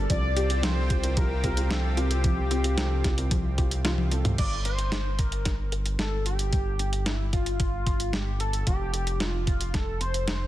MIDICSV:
0, 0, Header, 1, 7, 480
1, 0, Start_track
1, 0, Key_signature, -2, "minor"
1, 0, Tempo, 535714
1, 88, Time_signature, 4, 2, 24, 8
1, 9384, End_track
2, 0, Start_track
2, 0, Title_t, "Analog synth lead"
2, 0, Program_c, 0, 81
2, 90, Note_on_c, 0, 74, 118
2, 569, Note_on_c, 0, 72, 104
2, 583, Note_off_c, 0, 74, 0
2, 1049, Note_on_c, 0, 70, 99
2, 1062, Note_off_c, 0, 72, 0
2, 1529, Note_on_c, 0, 69, 94
2, 1543, Note_off_c, 0, 70, 0
2, 1770, Note_on_c, 0, 67, 91
2, 1783, Note_off_c, 0, 69, 0
2, 3209, Note_off_c, 0, 67, 0
2, 3930, Note_on_c, 0, 74, 113
2, 4152, Note_off_c, 0, 74, 0
2, 4169, Note_on_c, 0, 72, 102
2, 4647, Note_on_c, 0, 70, 86
2, 4661, Note_off_c, 0, 72, 0
2, 5127, Note_off_c, 0, 70, 0
2, 5369, Note_on_c, 0, 69, 94
2, 5591, Note_off_c, 0, 69, 0
2, 5608, Note_on_c, 0, 67, 99
2, 6329, Note_on_c, 0, 64, 93
2, 6343, Note_off_c, 0, 67, 0
2, 6562, Note_off_c, 0, 64, 0
2, 6568, Note_on_c, 0, 65, 95
2, 7288, Note_on_c, 0, 67, 94
2, 7301, Note_off_c, 0, 65, 0
2, 7523, Note_off_c, 0, 67, 0
2, 7528, Note_on_c, 0, 69, 94
2, 7751, Note_off_c, 0, 69, 0
2, 7767, Note_on_c, 0, 67, 105
2, 8247, Note_on_c, 0, 65, 103
2, 8261, Note_off_c, 0, 67, 0
2, 8727, Note_on_c, 0, 69, 105
2, 8740, Note_off_c, 0, 65, 0
2, 8967, Note_on_c, 0, 72, 115
2, 8980, Note_off_c, 0, 69, 0
2, 9384, Note_off_c, 0, 72, 0
2, 9384, End_track
3, 0, Start_track
3, 0, Title_t, "Grand piano"
3, 0, Program_c, 1, 0
3, 86, Note_on_c, 1, 48, 74
3, 87, Note_on_c, 1, 60, 70
3, 87, Note_on_c, 1, 65, 70
3, 87, Note_on_c, 1, 67, 86
3, 298, Note_off_c, 1, 48, 0
3, 298, Note_off_c, 1, 60, 0
3, 298, Note_off_c, 1, 65, 0
3, 298, Note_off_c, 1, 67, 0
3, 327, Note_on_c, 1, 48, 94
3, 327, Note_on_c, 1, 60, 85
3, 327, Note_on_c, 1, 65, 88
3, 327, Note_on_c, 1, 67, 107
3, 418, Note_off_c, 1, 48, 0
3, 418, Note_off_c, 1, 60, 0
3, 418, Note_off_c, 1, 67, 0
3, 419, Note_off_c, 1, 65, 0
3, 447, Note_on_c, 1, 48, 89
3, 447, Note_on_c, 1, 60, 80
3, 447, Note_on_c, 1, 65, 79
3, 447, Note_on_c, 1, 67, 95
3, 538, Note_off_c, 1, 48, 0
3, 538, Note_off_c, 1, 60, 0
3, 538, Note_off_c, 1, 65, 0
3, 538, Note_off_c, 1, 67, 0
3, 567, Note_on_c, 1, 48, 89
3, 567, Note_on_c, 1, 60, 79
3, 567, Note_on_c, 1, 65, 79
3, 567, Note_on_c, 1, 69, 95
3, 778, Note_off_c, 1, 48, 0
3, 778, Note_off_c, 1, 60, 0
3, 778, Note_off_c, 1, 65, 0
3, 778, Note_off_c, 1, 69, 0
3, 807, Note_on_c, 1, 48, 85
3, 807, Note_on_c, 1, 60, 73
3, 807, Note_on_c, 1, 65, 72
3, 807, Note_on_c, 1, 67, 93
3, 899, Note_off_c, 1, 48, 0
3, 899, Note_off_c, 1, 60, 0
3, 899, Note_off_c, 1, 65, 0
3, 899, Note_off_c, 1, 67, 0
3, 927, Note_on_c, 1, 48, 82
3, 927, Note_on_c, 1, 60, 74
3, 927, Note_on_c, 1, 65, 75
3, 927, Note_on_c, 1, 70, 89
3, 988, Note_off_c, 1, 48, 0
3, 988, Note_off_c, 1, 60, 0
3, 988, Note_off_c, 1, 65, 0
3, 988, Note_off_c, 1, 70, 0
3, 1047, Note_on_c, 1, 48, 82
3, 1047, Note_on_c, 1, 60, 79
3, 1047, Note_on_c, 1, 65, 80
3, 1047, Note_on_c, 1, 67, 92
3, 1144, Note_off_c, 1, 67, 0
3, 1145, Note_off_c, 1, 48, 0
3, 1145, Note_off_c, 1, 60, 0
3, 1145, Note_off_c, 1, 65, 0
3, 1287, Note_on_c, 1, 65, 97
3, 1288, Note_on_c, 1, 48, 102
3, 1288, Note_on_c, 1, 60, 98
3, 1288, Note_on_c, 1, 67, 118
3, 1379, Note_off_c, 1, 48, 0
3, 1379, Note_off_c, 1, 60, 0
3, 1379, Note_off_c, 1, 65, 0
3, 1379, Note_off_c, 1, 67, 0
3, 1407, Note_on_c, 1, 48, 90
3, 1407, Note_on_c, 1, 60, 84
3, 1407, Note_on_c, 1, 65, 82
3, 1407, Note_on_c, 1, 67, 100
3, 1499, Note_off_c, 1, 48, 0
3, 1499, Note_off_c, 1, 60, 0
3, 1499, Note_off_c, 1, 65, 0
3, 1499, Note_off_c, 1, 67, 0
3, 1527, Note_on_c, 1, 48, 93
3, 1528, Note_on_c, 1, 60, 86
3, 1528, Note_on_c, 1, 65, 90
3, 1528, Note_on_c, 1, 67, 107
3, 1739, Note_off_c, 1, 48, 0
3, 1739, Note_off_c, 1, 60, 0
3, 1739, Note_off_c, 1, 65, 0
3, 1739, Note_off_c, 1, 67, 0
3, 1767, Note_on_c, 1, 60, 86
3, 1767, Note_on_c, 1, 65, 89
3, 1768, Note_on_c, 1, 48, 95
3, 1768, Note_on_c, 1, 70, 105
3, 1859, Note_off_c, 1, 48, 0
3, 1859, Note_off_c, 1, 60, 0
3, 1859, Note_off_c, 1, 65, 0
3, 1859, Note_off_c, 1, 70, 0
3, 1887, Note_on_c, 1, 48, 84
3, 1888, Note_on_c, 1, 60, 71
3, 1888, Note_on_c, 1, 65, 74
3, 1888, Note_on_c, 1, 67, 85
3, 1948, Note_off_c, 1, 48, 0
3, 1948, Note_off_c, 1, 60, 0
3, 1948, Note_off_c, 1, 65, 0
3, 1948, Note_off_c, 1, 67, 0
3, 2007, Note_on_c, 1, 48, 73
3, 2007, Note_on_c, 1, 60, 69
3, 2007, Note_on_c, 1, 65, 69
3, 2007, Note_on_c, 1, 67, 82
3, 2219, Note_off_c, 1, 48, 0
3, 2219, Note_off_c, 1, 60, 0
3, 2219, Note_off_c, 1, 65, 0
3, 2219, Note_off_c, 1, 67, 0
3, 2247, Note_on_c, 1, 48, 94
3, 2247, Note_on_c, 1, 60, 91
3, 2247, Note_on_c, 1, 65, 90
3, 2247, Note_on_c, 1, 67, 107
3, 2338, Note_off_c, 1, 48, 0
3, 2338, Note_off_c, 1, 60, 0
3, 2339, Note_off_c, 1, 65, 0
3, 2339, Note_off_c, 1, 67, 0
3, 2368, Note_on_c, 1, 48, 90
3, 2368, Note_on_c, 1, 60, 80
3, 2368, Note_on_c, 1, 65, 77
3, 2368, Note_on_c, 1, 67, 98
3, 2459, Note_off_c, 1, 48, 0
3, 2459, Note_off_c, 1, 60, 0
3, 2459, Note_off_c, 1, 65, 0
3, 2459, Note_off_c, 1, 67, 0
3, 2487, Note_on_c, 1, 48, 88
3, 2487, Note_on_c, 1, 60, 78
3, 2487, Note_on_c, 1, 65, 81
3, 2488, Note_on_c, 1, 69, 95
3, 2699, Note_off_c, 1, 48, 0
3, 2699, Note_off_c, 1, 60, 0
3, 2699, Note_off_c, 1, 65, 0
3, 2699, Note_off_c, 1, 69, 0
3, 2727, Note_on_c, 1, 48, 80
3, 2727, Note_on_c, 1, 60, 78
3, 2727, Note_on_c, 1, 65, 77
3, 2727, Note_on_c, 1, 67, 96
3, 2819, Note_off_c, 1, 48, 0
3, 2819, Note_off_c, 1, 60, 0
3, 2819, Note_off_c, 1, 65, 0
3, 2819, Note_off_c, 1, 67, 0
3, 2847, Note_on_c, 1, 60, 74
3, 2847, Note_on_c, 1, 65, 74
3, 2847, Note_on_c, 1, 70, 87
3, 2848, Note_on_c, 1, 48, 77
3, 2908, Note_off_c, 1, 48, 0
3, 2908, Note_off_c, 1, 60, 0
3, 2908, Note_off_c, 1, 65, 0
3, 2908, Note_off_c, 1, 70, 0
3, 2968, Note_on_c, 1, 48, 84
3, 2968, Note_on_c, 1, 67, 88
3, 2969, Note_on_c, 1, 60, 77
3, 2969, Note_on_c, 1, 65, 76
3, 3065, Note_off_c, 1, 48, 0
3, 3065, Note_off_c, 1, 60, 0
3, 3065, Note_off_c, 1, 65, 0
3, 3065, Note_off_c, 1, 67, 0
3, 3208, Note_on_c, 1, 48, 81
3, 3208, Note_on_c, 1, 60, 72
3, 3208, Note_on_c, 1, 65, 73
3, 3208, Note_on_c, 1, 67, 89
3, 3419, Note_off_c, 1, 48, 0
3, 3419, Note_off_c, 1, 60, 0
3, 3419, Note_off_c, 1, 65, 0
3, 3419, Note_off_c, 1, 67, 0
3, 3448, Note_on_c, 1, 48, 94
3, 3448, Note_on_c, 1, 60, 86
3, 3448, Note_on_c, 1, 65, 86
3, 3448, Note_on_c, 1, 67, 107
3, 3659, Note_off_c, 1, 48, 0
3, 3659, Note_off_c, 1, 60, 0
3, 3659, Note_off_c, 1, 65, 0
3, 3659, Note_off_c, 1, 67, 0
3, 3688, Note_on_c, 1, 60, 85
3, 3688, Note_on_c, 1, 65, 79
3, 3688, Note_on_c, 1, 69, 100
3, 3899, Note_off_c, 1, 60, 0
3, 3899, Note_off_c, 1, 65, 0
3, 3899, Note_off_c, 1, 69, 0
3, 9384, End_track
4, 0, Start_track
4, 0, Title_t, "Analog synth pad"
4, 0, Program_c, 2, 89
4, 87, Note_on_c, 2, 48, 82
4, 87, Note_on_c, 2, 60, 70
4, 87, Note_on_c, 2, 65, 75
4, 87, Note_on_c, 2, 67, 84
4, 3891, Note_off_c, 2, 48, 0
4, 3891, Note_off_c, 2, 65, 0
4, 3892, Note_off_c, 2, 60, 0
4, 3892, Note_off_c, 2, 67, 0
4, 9384, End_track
5, 0, Start_track
5, 0, Title_t, "Synth arpeggio sound"
5, 0, Program_c, 3, 84
5, 88, Note_on_c, 3, 53, 88
5, 288, Note_off_c, 3, 53, 0
5, 327, Note_on_c, 3, 67, 104
5, 461, Note_off_c, 3, 67, 0
5, 568, Note_on_c, 3, 53, 78
5, 648, Note_off_c, 3, 53, 0
5, 808, Note_on_c, 3, 72, 71
5, 888, Note_off_c, 3, 72, 0
5, 1047, Note_on_c, 3, 53, 84
5, 1127, Note_off_c, 3, 53, 0
5, 1288, Note_on_c, 3, 60, 78
5, 1421, Note_off_c, 3, 60, 0
5, 1527, Note_on_c, 3, 53, 78
5, 1727, Note_off_c, 3, 53, 0
5, 1767, Note_on_c, 3, 65, 74
5, 1847, Note_off_c, 3, 65, 0
5, 2007, Note_on_c, 3, 53, 87
5, 2141, Note_off_c, 3, 53, 0
5, 2248, Note_on_c, 3, 60, 74
5, 2381, Note_off_c, 3, 60, 0
5, 2488, Note_on_c, 3, 53, 77
5, 2621, Note_off_c, 3, 53, 0
5, 2728, Note_on_c, 3, 65, 73
5, 2861, Note_off_c, 3, 65, 0
5, 2968, Note_on_c, 3, 53, 81
5, 3168, Note_off_c, 3, 53, 0
5, 3208, Note_on_c, 3, 67, 79
5, 3408, Note_off_c, 3, 67, 0
5, 3447, Note_on_c, 3, 65, 107
5, 3581, Note_off_c, 3, 65, 0
5, 3688, Note_on_c, 3, 53, 74
5, 3821, Note_off_c, 3, 53, 0
5, 3927, Note_on_c, 3, 55, 83
5, 4061, Note_off_c, 3, 55, 0
5, 4168, Note_on_c, 3, 62, 78
5, 4301, Note_off_c, 3, 62, 0
5, 4407, Note_on_c, 3, 55, 75
5, 4541, Note_off_c, 3, 55, 0
5, 4648, Note_on_c, 3, 67, 71
5, 4781, Note_off_c, 3, 67, 0
5, 5128, Note_on_c, 3, 70, 103
5, 5261, Note_off_c, 3, 70, 0
5, 5368, Note_on_c, 3, 55, 76
5, 5448, Note_off_c, 3, 55, 0
5, 5848, Note_on_c, 3, 55, 83
5, 5928, Note_off_c, 3, 55, 0
5, 6087, Note_on_c, 3, 62, 75
5, 6221, Note_off_c, 3, 62, 0
5, 6567, Note_on_c, 3, 67, 70
5, 6648, Note_off_c, 3, 67, 0
5, 6807, Note_on_c, 3, 55, 76
5, 6941, Note_off_c, 3, 55, 0
5, 7047, Note_on_c, 3, 62, 76
5, 7180, Note_off_c, 3, 62, 0
5, 7286, Note_on_c, 3, 55, 80
5, 7420, Note_off_c, 3, 55, 0
5, 7526, Note_on_c, 3, 67, 76
5, 7660, Note_off_c, 3, 67, 0
5, 7766, Note_on_c, 3, 53, 84
5, 7967, Note_off_c, 3, 53, 0
5, 8006, Note_on_c, 3, 69, 94
5, 8140, Note_off_c, 3, 69, 0
5, 8486, Note_on_c, 3, 72, 73
5, 8567, Note_off_c, 3, 72, 0
5, 8726, Note_on_c, 3, 53, 83
5, 8807, Note_off_c, 3, 53, 0
5, 8966, Note_on_c, 3, 60, 73
5, 9100, Note_off_c, 3, 60, 0
5, 9207, Note_on_c, 3, 53, 77
5, 9384, Note_off_c, 3, 53, 0
5, 9384, End_track
6, 0, Start_track
6, 0, Title_t, "Analog synth bass"
6, 0, Program_c, 4, 38
6, 88, Note_on_c, 4, 36, 90
6, 3904, Note_off_c, 4, 36, 0
6, 3928, Note_on_c, 4, 31, 86
6, 7744, Note_off_c, 4, 31, 0
6, 7767, Note_on_c, 4, 29, 87
6, 9384, Note_off_c, 4, 29, 0
6, 9384, End_track
7, 0, Start_track
7, 0, Title_t, "Drums"
7, 88, Note_on_c, 9, 36, 113
7, 88, Note_on_c, 9, 42, 97
7, 178, Note_off_c, 9, 36, 0
7, 178, Note_off_c, 9, 42, 0
7, 327, Note_on_c, 9, 42, 67
7, 417, Note_off_c, 9, 42, 0
7, 448, Note_on_c, 9, 42, 69
7, 537, Note_off_c, 9, 42, 0
7, 567, Note_on_c, 9, 38, 112
7, 567, Note_on_c, 9, 42, 91
7, 657, Note_off_c, 9, 38, 0
7, 657, Note_off_c, 9, 42, 0
7, 807, Note_on_c, 9, 42, 66
7, 808, Note_on_c, 9, 36, 101
7, 897, Note_off_c, 9, 42, 0
7, 898, Note_off_c, 9, 36, 0
7, 927, Note_on_c, 9, 42, 70
7, 1017, Note_off_c, 9, 42, 0
7, 1047, Note_on_c, 9, 42, 100
7, 1048, Note_on_c, 9, 36, 123
7, 1137, Note_off_c, 9, 42, 0
7, 1138, Note_off_c, 9, 36, 0
7, 1288, Note_on_c, 9, 36, 60
7, 1288, Note_on_c, 9, 42, 64
7, 1377, Note_off_c, 9, 42, 0
7, 1378, Note_off_c, 9, 36, 0
7, 1408, Note_on_c, 9, 42, 64
7, 1497, Note_off_c, 9, 42, 0
7, 1528, Note_on_c, 9, 38, 121
7, 1528, Note_on_c, 9, 42, 93
7, 1618, Note_off_c, 9, 38, 0
7, 1618, Note_off_c, 9, 42, 0
7, 1768, Note_on_c, 9, 42, 65
7, 1857, Note_off_c, 9, 42, 0
7, 1888, Note_on_c, 9, 42, 66
7, 1977, Note_off_c, 9, 42, 0
7, 2007, Note_on_c, 9, 42, 96
7, 2008, Note_on_c, 9, 36, 120
7, 2097, Note_off_c, 9, 42, 0
7, 2098, Note_off_c, 9, 36, 0
7, 2248, Note_on_c, 9, 42, 70
7, 2338, Note_off_c, 9, 42, 0
7, 2368, Note_on_c, 9, 42, 70
7, 2457, Note_off_c, 9, 42, 0
7, 2487, Note_on_c, 9, 38, 119
7, 2487, Note_on_c, 9, 42, 94
7, 2577, Note_off_c, 9, 38, 0
7, 2577, Note_off_c, 9, 42, 0
7, 2727, Note_on_c, 9, 38, 60
7, 2727, Note_on_c, 9, 42, 70
7, 2728, Note_on_c, 9, 36, 101
7, 2817, Note_off_c, 9, 38, 0
7, 2817, Note_off_c, 9, 42, 0
7, 2818, Note_off_c, 9, 36, 0
7, 2848, Note_on_c, 9, 42, 70
7, 2937, Note_off_c, 9, 42, 0
7, 2967, Note_on_c, 9, 42, 102
7, 2968, Note_on_c, 9, 36, 121
7, 3057, Note_off_c, 9, 42, 0
7, 3058, Note_off_c, 9, 36, 0
7, 3207, Note_on_c, 9, 42, 69
7, 3208, Note_on_c, 9, 36, 101
7, 3297, Note_off_c, 9, 42, 0
7, 3298, Note_off_c, 9, 36, 0
7, 3328, Note_on_c, 9, 42, 68
7, 3417, Note_off_c, 9, 42, 0
7, 3447, Note_on_c, 9, 38, 118
7, 3447, Note_on_c, 9, 42, 94
7, 3447, Note_on_c, 9, 48, 64
7, 3537, Note_off_c, 9, 38, 0
7, 3537, Note_off_c, 9, 42, 0
7, 3537, Note_off_c, 9, 48, 0
7, 3567, Note_on_c, 9, 48, 62
7, 3656, Note_off_c, 9, 48, 0
7, 3687, Note_on_c, 9, 42, 67
7, 3777, Note_off_c, 9, 42, 0
7, 3808, Note_on_c, 9, 42, 67
7, 3808, Note_on_c, 9, 45, 87
7, 3897, Note_off_c, 9, 42, 0
7, 3897, Note_off_c, 9, 45, 0
7, 3927, Note_on_c, 9, 42, 89
7, 3927, Note_on_c, 9, 49, 89
7, 3928, Note_on_c, 9, 36, 115
7, 4017, Note_off_c, 9, 42, 0
7, 4017, Note_off_c, 9, 49, 0
7, 4018, Note_off_c, 9, 36, 0
7, 4167, Note_on_c, 9, 42, 68
7, 4256, Note_off_c, 9, 42, 0
7, 4287, Note_on_c, 9, 42, 68
7, 4377, Note_off_c, 9, 42, 0
7, 4407, Note_on_c, 9, 38, 113
7, 4407, Note_on_c, 9, 42, 90
7, 4497, Note_off_c, 9, 38, 0
7, 4497, Note_off_c, 9, 42, 0
7, 4647, Note_on_c, 9, 42, 66
7, 4648, Note_on_c, 9, 36, 102
7, 4737, Note_off_c, 9, 42, 0
7, 4738, Note_off_c, 9, 36, 0
7, 4767, Note_on_c, 9, 42, 69
7, 4857, Note_off_c, 9, 42, 0
7, 4887, Note_on_c, 9, 38, 62
7, 4887, Note_on_c, 9, 42, 95
7, 4888, Note_on_c, 9, 36, 125
7, 4977, Note_off_c, 9, 38, 0
7, 4977, Note_off_c, 9, 42, 0
7, 4978, Note_off_c, 9, 36, 0
7, 5127, Note_on_c, 9, 42, 64
7, 5217, Note_off_c, 9, 42, 0
7, 5247, Note_on_c, 9, 42, 64
7, 5336, Note_off_c, 9, 42, 0
7, 5367, Note_on_c, 9, 38, 117
7, 5367, Note_on_c, 9, 42, 97
7, 5456, Note_off_c, 9, 38, 0
7, 5456, Note_off_c, 9, 42, 0
7, 5607, Note_on_c, 9, 42, 66
7, 5696, Note_off_c, 9, 42, 0
7, 5726, Note_on_c, 9, 42, 67
7, 5816, Note_off_c, 9, 42, 0
7, 5847, Note_on_c, 9, 42, 90
7, 5848, Note_on_c, 9, 36, 118
7, 5937, Note_off_c, 9, 42, 0
7, 5938, Note_off_c, 9, 36, 0
7, 6087, Note_on_c, 9, 42, 69
7, 6177, Note_off_c, 9, 42, 0
7, 6207, Note_on_c, 9, 42, 69
7, 6296, Note_off_c, 9, 42, 0
7, 6327, Note_on_c, 9, 38, 117
7, 6327, Note_on_c, 9, 42, 91
7, 6416, Note_off_c, 9, 38, 0
7, 6416, Note_off_c, 9, 42, 0
7, 6567, Note_on_c, 9, 42, 68
7, 6568, Note_on_c, 9, 36, 104
7, 6657, Note_off_c, 9, 42, 0
7, 6658, Note_off_c, 9, 36, 0
7, 6687, Note_on_c, 9, 42, 68
7, 6776, Note_off_c, 9, 42, 0
7, 6807, Note_on_c, 9, 42, 95
7, 6808, Note_on_c, 9, 36, 123
7, 6896, Note_off_c, 9, 42, 0
7, 6898, Note_off_c, 9, 36, 0
7, 7047, Note_on_c, 9, 42, 67
7, 7048, Note_on_c, 9, 36, 103
7, 7137, Note_off_c, 9, 36, 0
7, 7137, Note_off_c, 9, 42, 0
7, 7167, Note_on_c, 9, 42, 64
7, 7256, Note_off_c, 9, 42, 0
7, 7287, Note_on_c, 9, 38, 118
7, 7287, Note_on_c, 9, 42, 92
7, 7376, Note_off_c, 9, 38, 0
7, 7376, Note_off_c, 9, 42, 0
7, 7526, Note_on_c, 9, 42, 64
7, 7616, Note_off_c, 9, 42, 0
7, 7646, Note_on_c, 9, 42, 65
7, 7736, Note_off_c, 9, 42, 0
7, 7766, Note_on_c, 9, 42, 93
7, 7768, Note_on_c, 9, 36, 114
7, 7856, Note_off_c, 9, 42, 0
7, 7857, Note_off_c, 9, 36, 0
7, 8006, Note_on_c, 9, 42, 67
7, 8096, Note_off_c, 9, 42, 0
7, 8126, Note_on_c, 9, 42, 70
7, 8216, Note_off_c, 9, 42, 0
7, 8246, Note_on_c, 9, 38, 123
7, 8246, Note_on_c, 9, 42, 89
7, 8336, Note_off_c, 9, 38, 0
7, 8336, Note_off_c, 9, 42, 0
7, 8486, Note_on_c, 9, 42, 64
7, 8487, Note_on_c, 9, 36, 104
7, 8576, Note_off_c, 9, 42, 0
7, 8577, Note_off_c, 9, 36, 0
7, 8607, Note_on_c, 9, 42, 68
7, 8696, Note_off_c, 9, 42, 0
7, 8727, Note_on_c, 9, 36, 124
7, 8727, Note_on_c, 9, 38, 65
7, 8727, Note_on_c, 9, 42, 91
7, 8817, Note_off_c, 9, 36, 0
7, 8817, Note_off_c, 9, 38, 0
7, 8817, Note_off_c, 9, 42, 0
7, 8967, Note_on_c, 9, 42, 61
7, 9057, Note_off_c, 9, 42, 0
7, 9088, Note_on_c, 9, 42, 63
7, 9177, Note_off_c, 9, 42, 0
7, 9207, Note_on_c, 9, 38, 123
7, 9207, Note_on_c, 9, 42, 94
7, 9297, Note_off_c, 9, 38, 0
7, 9297, Note_off_c, 9, 42, 0
7, 9384, End_track
0, 0, End_of_file